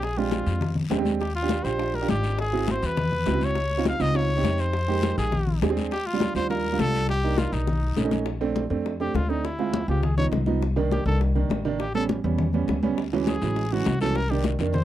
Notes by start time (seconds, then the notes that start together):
Already playing: A#1
0.02 G#4, high bongo, high conga, long guiro
0.17 G#3 C4 D4 F4 G4, high bongo, high conga
0.31 high bongo, high conga, short guiro
0.46 F2, high conga, short guiro
0.61 high bongo, high conga, low conga, long guiro
0.75 high bongo, high conga, low conga
0.90 D#2 G#3 C4 D4 G4, high bongo, low bongo, high conga, short guiro
0.98 G#3 C4 D4 G4
1.05 high bongo, high conga, short guiro
1.20 G4, high bongo, high conga, long guiro
1.35 F4, high bongo, high conga
1.42 D4 F4 G4
1.49 high bongo, high conga, short guiro
1.64 A#1 D4 F4 G4 C5, high conga, short guiro
1.78 D4 F4 G4, high bongo, high conga, long guiro
1.94 A#4, high bongo, high conga
2.01 D4 F4 G4
2.09 G#1 G4, high bongo, low bongo, high conga, short guiro
2.24 high bongo, high conga, short guiro
2.38 G#4, high bongo, high conga, long guiro
2.53 C4 E4 F#4, high bongo, high conga
2.68 C5, high bongo, high conga, short guiro
2.82 E2 B4, high conga, short guiro
2.97 high bongo, high conga, low conga, long guiro
3.12 high bongo, high conga, low conga
3.26 C#2 C4 E4 F#4, high bongo, low bongo, high conga, short guiro
3.33 C4 E4 F#4
3.41 C#5, high bongo, high conga, short guiro
3.55 high bongo, high conga, long guiro
3.71 high bongo, high conga
3.77 C4 D#4 F4
3.85 F5, high bongo, high conga, short guiro
3.99 C#2 C4 D#4 F4 D#5, high conga, short guiro
4.14 C4 D#4 F4 C#5, high bongo, high conga, long guiro
4.29 high bongo, high conga
4.37 C4 D#4 G4
4.43 F2, high bongo, low bongo, high conga, short guiro
4.58 C5, high bongo, high conga, short guiro
4.73 high bongo, high conga, long guiro
4.88 G#3 A#3 D#4 G4, high bongo, high conga
5.03 high bongo, high conga, short guiro
5.18 A#1 G#4, high conga, short guiro
5.32 high bongo, high conga, low conga, long guiro
5.47 high bongo, high conga, low conga
5.62 D#2 C4 D4 G#4, high bongo, low bongo, high conga, short guiro
5.70 C4 D4 G#4
5.77 high bongo, high conga, short guiro
5.91 G4, high bongo, high conga, long guiro
6.07 F4, high bongo, high conga
6.13 G3 D4 F4
6.20 high bongo, high conga, short guiro
6.35 D#2 G3 D4 F4 C5, high conga, short guiro
6.50 G3 D4 F4 A#4, high bongo, high conga, long guiro
6.65 high bongo, high conga
6.72 G3 D4 F4
6.79 C2 A4, high bongo, low bongo, high conga, short guiro
6.94 high bongo, high conga, short guiro
7.08 G4, high bongo, high conga, long guiro
7.24 A#3 D4 D#4, high bongo, high conga
7.38 F4, high bongo, high conga, short guiro
7.52 B1 D#4, high conga, short guiro
7.67 high bongo, high conga, low conga, long guiro
7.82 high conga
7.97 A#1 A3 C#4 D#4, low bongo, high conga, short guiro
8.04 A3 C#4 D#4
8.11 low bongo, high conga, short guiro
8.26 high bongo, high conga
8.41 A3 C4 D4, high bongo, high conga
8.56 high bongo, high conga
8.70 F2 A3 C4 D4, high conga
8.86 high bongo, high conga
9.00 A3 C4 D4 G4, high bongo, high conga
9.14 D2 F4, high bongo, low bongo, high conga
9.29 A3 C4 D4 D#4, high bongo, high conga
9.44 E4, high bongo, high conga
9.59 G#3 C4 F4, high bongo, high conga
9.74 high bongo, high conga
9.88 C#2 G#3 C4 F4 G4, high conga
10.03 G#4, high bongo, high conga, low conga
10.17 F3 B3 D#4 C#5, high bongo, high conga, low conga
10.32 C2, high bongo, low bongo, high conga
10.46 F3 B3 D#4, high bongo, high conga
10.61 high bongo, high conga
10.76 D#3 A#3 D4, high bongo, high conga
10.91 G4, high bongo, high conga
11.06 C2 D#3 A#3 D4 A4, high conga
11.21 high bongo, high conga
11.35 D#3 A#3 D4, high bongo, high conga
11.49 A1, high bongo, low bongo, high conga
11.65 D#3 A#3 D4, high bongo, high conga
11.79 G4, high bongo, high conga
11.94 G3 B3 C#4 A4, high bongo, high conga
12.09 high bongo, high conga
12.24 E2 G3 B3 C#4, high conga
12.38 high bongo, high conga, low conga
12.53 G3 B3 C#4, high bongo, high conga
12.68 D2, high bongo, low bongo, high conga
12.83 G3 B3 C#4, high bongo, high conga
12.98 high bongo, high conga, long guiro
13.13 E3 F#3 G#3 C#4, high bongo, high conga
13.27 G#4, high bongo, high conga, short guiro
13.42 A1 E3 F#3 G#3 C#4, high conga, short guiro
13.56 high bongo, high conga, long guiro
13.72 E3 F#3 G#3 C#4 F#4, high bongo, high conga
13.86 C2, high bongo, low bongo, high conga, short guiro
14.01 E3 F#3 G#3 C#4 A4, high bongo, high conga, short guiro
14.15 A#4, high bongo, high conga, long guiro
14.30 D#3 A#3 D4 G4, high bongo, high conga
14.44 high bongo, high conga, short guiro
14.59 F2 D#3 A#3 D4, high conga, short guiro
14.74 C5, high bongo, high conga, low conga, long guiro